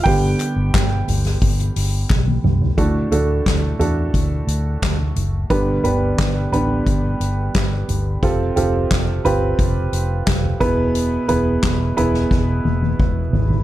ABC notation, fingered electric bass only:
X:1
M:4/4
L:1/16
Q:1/4=88
K:Ddor
V:1 name="Fingered electric bass" clef=bass
G,,,2 z G,,, G,,,2 G,,,2 G,,,2 G,,,2 B,,,2 C,,2 | D,,2 D,,2 D,,2 E,,2 D,,2 D,,2 D,,2 ^F,,,2 | G,,,2 G,,,2 G,,,2 A,,,2 G,,,2 G,,,2 G,,,2 G,,,2 | F,,,2 F,,,2 F,,,2 G,,,2 F,,,2 F,,,2 F,,,2 E,,,2- |
E,,,2 E,,,2 E,,,2 E,,,2 E,,,2 E,,,2 E,,,2 ^G,,,2 |]